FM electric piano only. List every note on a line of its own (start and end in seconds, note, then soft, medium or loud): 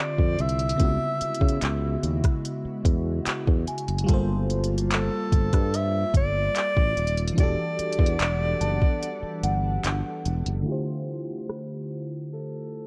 0.00 0.74 D3 medium
0.00 0.75 C4 medium
0.00 0.76 F4 medium
0.00 0.77 G4 medium
0.00 0.78 E5 medium
0.76 4.03 C#3 medium
0.76 4.04 B3 medium
0.80 4.05 E4 medium
0.80 4.06 F#4 medium
0.85 4.07 E5 medium
4.04 7.31 G3 medium
4.04 7.33 F4 medium
4.09 7.35 A#3 medium
4.09 7.34 A4 medium
4.14 7.36 C5 medium
7.33 10.60 E3 medium
7.33 10.61 D4 medium
7.38 10.63 F#4 medium
7.38 10.64 G4 medium
7.43 10.65 A4 medium
10.62 12.87 D3 medium
10.62 12.87 A3 medium
10.62 12.87 E4 medium
10.68 12.87 F4 medium
10.68 12.87 G4 medium
10.72 12.87 C5 medium